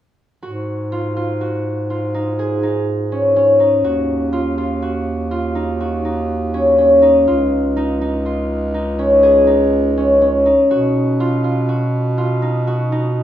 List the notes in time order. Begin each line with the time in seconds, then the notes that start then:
0.43 G#2 F#4
0.92 F4
1.17 F4
1.41 F#4
1.90 F4
2.14 D#4
2.39 G#4
2.63 D#4
3.12 C#4
3.36 C#4
3.60 D#4
3.84 D#2 F#4
4.33 F4
4.58 F4
4.82 F#4
5.31 F4
5.55 D#4
5.80 F#4
6.05 D#4
6.54 C#4
6.78 C#4
7.02 D#4
7.28 C#2 F4
7.77 D#4
8.01 D#4
8.26 F4
8.74 D#4
8.99 C#4
9.23 G#4
9.47 D#4
9.97 C#4
10.21 C#4
10.46 D#4
10.71 B2 F#4
11.20 F4
11.44 F4
11.69 F#4
12.18 F4
12.42 D#4
12.67 F#4
12.92 D#4